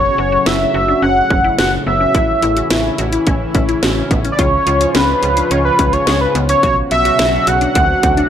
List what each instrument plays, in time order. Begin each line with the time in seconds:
Already playing: analog synth pad A2 C#3 F#3 C#4 F#4, synth arpeggio sound F#4, analog synth lead C#5
0.18 fm bass F#1, synth arpeggio sound F#4
0.32 synth arpeggio sound F#4
0.46 fm bass F#1, synth arpeggio sound E4, analog synth lead E5, snare
0.74 fm bass F#1, synth arpeggio sound F#4
0.88 synth arpeggio sound D4
1.02 fm bass F#1, synth arpeggio sound C#4, analog synth lead F#5
1.30 fm bass F#1, synth arpeggio sound C#4, kick
1.44 synth arpeggio sound E4
1.58 fm bass F#1, synth arpeggio sound F#4, analog synth lead F#5, snare
1.86 fm bass F#1, synth arpeggio sound B3, analog synth lead E5
2.01 synth arpeggio sound C#4
2.15 fm bass A1, analog synth pad E3 C#4 E4, synth arpeggio sound E4, kick, closed hi-hat
2.42 fm bass A1, synth arpeggio sound E4, closed hi-hat
2.57 synth arpeggio sound F#4, closed hi-hat
2.70 fm bass A1, synth arpeggio sound E4, snare, closed hi-hat
2.98 fm bass A1, synth arpeggio sound F#4, closed hi-hat
3.13 synth arpeggio sound E4, closed hi-hat
3.27 fm bass A1, synth arpeggio sound C#4, kick, closed hi-hat
3.55 fm bass A1, synth arpeggio sound C#4, kick, closed hi-hat
3.69 synth arpeggio sound E4, closed hi-hat
3.83 fm bass A1, synth arpeggio sound F#4, snare, closed hi-hat
4.11 fm bass A1, synth arpeggio sound B3, kick, closed hi-hat
4.25 synth arpeggio sound C#4, closed hi-hat
4.32 analog synth lead D5
4.39 fm bass C#2, analog synth pad G#2 C#3 F3 F4, synth arpeggio sound F4, analog synth lead C#5, kick, closed hi-hat
4.67 fm bass C#2, synth arpeggio sound F4, closed hi-hat
4.81 synth arpeggio sound F4, closed hi-hat
4.95 fm bass C#2, synth arpeggio sound C#4, analog synth lead B4, snare, closed hi-hat
5.23 fm bass C#2, synth arpeggio sound F4, closed hi-hat
5.37 synth arpeggio sound D4, closed hi-hat
5.51 fm bass C#2, synth arpeggio sound C#4, analog synth lead C#5, closed hi-hat
5.65 analog synth lead B4
5.79 fm bass C#2, synth arpeggio sound C#4, kick, closed hi-hat
5.93 synth arpeggio sound F4, analog synth lead C#5, closed hi-hat
6.07 fm bass C#2, synth arpeggio sound G#4, analog synth lead C#5, snare, closed hi-hat
6.21 analog synth lead B4
6.35 fm bass C#2, synth arpeggio sound B3, closed hi-hat
6.49 synth arpeggio sound C#4, analog synth lead C#5, closed hi-hat
6.63 fm bass B1, analog synth pad B2 F#3 F#4, synth arpeggio sound F#4, analog synth lead C#5, kick, closed hi-hat
6.91 fm bass B1, synth arpeggio sound F#4, analog synth lead E5, closed hi-hat
7.05 synth arpeggio sound F#4, closed hi-hat
7.19 fm bass B1, synth arpeggio sound E4, snare, closed hi-hat
7.47 fm bass B1, synth arpeggio sound F#4, analog synth lead F#5, closed hi-hat
7.61 synth arpeggio sound D4, closed hi-hat
7.75 fm bass D2, analog synth pad C3 A3 D4 F#4, synth arpeggio sound C4, kick, closed hi-hat
8.03 fm bass D2, synth arpeggio sound C4, kick, closed hi-hat
8.17 synth arpeggio sound D4, closed hi-hat